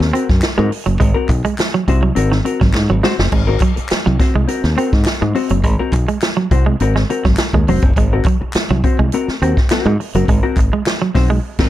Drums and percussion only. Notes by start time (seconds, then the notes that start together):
0.01 snare
0.15 closed hi-hat
0.29 kick, snare
0.42 snare, clap, closed hi-hat
0.72 open hi-hat
0.86 closed hi-hat
1.00 kick, closed hi-hat
1.29 kick, clap, closed hi-hat
1.45 closed hi-hat
1.58 snare, clap, closed hi-hat
1.88 kick, closed hi-hat
2.16 closed hi-hat
2.32 snare
2.46 closed hi-hat
2.61 kick, snare
2.73 snare, clap
3.04 snare
3.19 snare
3.32 kick, crash
3.60 kick, clap, closed hi-hat
3.77 closed hi-hat
3.89 snare, clap, closed hi-hat
4.19 kick, snare, closed hi-hat
4.48 closed hi-hat
4.64 snare
4.78 closed hi-hat
4.93 kick, snare
5.05 snare, clap, closed hi-hat
5.35 open hi-hat
5.49 closed hi-hat
5.64 kick, closed hi-hat
5.92 kick, clap, closed hi-hat
6.08 closed hi-hat
6.21 snare, clap, closed hi-hat
6.51 kick, closed hi-hat
6.80 closed hi-hat
6.96 snare
7.10 closed hi-hat
7.25 kick, snare
7.37 snare, clap, closed hi-hat
7.53 kick
7.68 open hi-hat
7.82 kick, closed hi-hat
7.96 kick, closed hi-hat
8.25 kick, clap, closed hi-hat
8.53 snare, clap, closed hi-hat
8.84 kick, closed hi-hat
9.12 closed hi-hat
9.28 snare
9.42 closed hi-hat
9.57 kick, snare
9.70 snare, clap, closed hi-hat
10.00 open hi-hat
10.15 closed hi-hat
10.28 kick, closed hi-hat
10.57 kick, clap, closed hi-hat
10.86 snare, clap, closed hi-hat
11.15 kick, snare, open hi-hat
11.59 kick, snare, crash